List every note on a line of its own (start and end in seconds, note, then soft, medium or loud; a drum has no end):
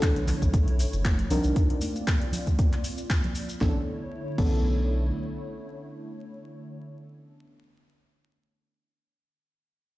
0.00 1.29 D3 medium
0.00 1.28 E3 medium
0.00 1.29 A3 medium
0.00 1.28 B3 medium
0.00 1.28 C#4 medium
0.00 1.28 D4 medium
0.00 1.29 E4 medium
0.00 1.28 A4 medium
0.00 1.29 C#5 medium
0.00 kick loud
0.00 clap loud
0.00 closed hi-hat medium
0.00 maracas soft
0.16 0.32 B1 medium
0.16 closed hi-hat medium
0.27 clap soft
0.27 open hi-hat medium
0.27 low conga medium
0.27 maracas medium
0.42 0.85 B1 loud
0.42 kick medium
0.42 closed hi-hat soft
0.42 high conga medium
0.42 maracas medium
0.54 kick loud
0.54 closed hi-hat medium
0.54 maracas soft
0.68 closed hi-hat medium
0.79 open hi-hat loud
0.79 maracas medium
0.93 1.24 F#1 medium
0.93 closed hi-hat soft
0.93 maracas soft
1.04 kick loud
1.04 clap loud
1.04 closed hi-hat medium
1.04 high conga medium
1.04 maracas soft
1.18 closed hi-hat medium
1.18 low conga medium
1.30 1.40 C2 loud
1.30 1.82 F3 medium
1.30 3.59 A#3 medium
1.30 1.82 C4 medium
1.30 3.59 C4 medium
1.30 1.82 D4 medium
1.30 1.82 D#4 medium
1.30 3.59 F4 medium
1.30 1.82 A#4 medium
1.30 3.59 D5 medium
1.30 open hi-hat medium
1.30 maracas medium
1.44 1.52 C2 loud
1.44 closed hi-hat soft
1.44 maracas soft
1.56 kick loud
1.56 closed hi-hat medium
1.56 maracas soft
1.70 closed hi-hat medium
1.81 open hi-hat loud
1.81 high conga medium
1.81 maracas loud
1.96 closed hi-hat soft
1.96 maracas soft
2.07 kick loud
2.07 clap loud
2.07 closed hi-hat medium
2.07 maracas soft
2.22 closed hi-hat soft
2.32 open hi-hat medium
2.32 low conga medium
2.32 maracas medium
2.47 kick medium
2.47 closed hi-hat soft
2.47 high conga medium
2.47 maracas soft
2.59 kick loud
2.59 closed hi-hat medium
2.59 maracas soft
2.73 clap soft
2.73 closed hi-hat soft
2.84 open hi-hat loud
2.84 maracas medium
2.98 closed hi-hat soft
2.98 maracas medium
3.10 kick loud
3.10 clap loud
3.10 closed hi-hat medium
3.10 maracas soft
3.24 closed hi-hat soft
3.24 low conga medium
3.35 open hi-hat medium
3.35 maracas medium
3.49 closed hi-hat soft
3.49 maracas soft
3.61 3.76 B1 medium
3.61 6.79 D3 medium
3.61 3.76 E3 medium
3.61 6.80 A3 medium
3.61 3.76 B3 medium
3.61 3.76 C#4 medium
3.61 3.77 D4 medium
3.61 6.80 E4 medium
3.61 3.77 A4 loud
3.61 6.80 C#5 medium
3.61 kick loud
3.61 snare medium
4.38 5.11 B1 medium
4.38 7.56 E3 medium
4.38 7.56 B3 medium
4.38 7.57 C#4 medium
4.38 7.57 D4 medium
4.38 7.57 A4 medium
4.38 kick loud
4.38 crash medium